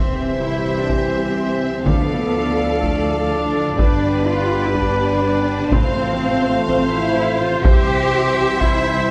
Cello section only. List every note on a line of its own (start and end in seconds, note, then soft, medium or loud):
0.00 0.37 C4 medium
0.41 0.77 E4 medium
0.78 0.89 D4 medium
0.90 1.86 C4 medium
1.85 2.82 B3 medium
2.82 3.29 A3 medium
3.30 3.77 D4 medium
3.79 4.26 D4 medium
4.27 4.63 F4 medium
4.64 4.76 E4 medium
4.74 5.69 D4 medium
5.71 6.67 C4 medium
6.68 6.92 C4 medium
6.92 7.39 E4 medium
7.41 7.65 F4 medium
7.64 8.61 G4 loud
8.61 9.10 E4 medium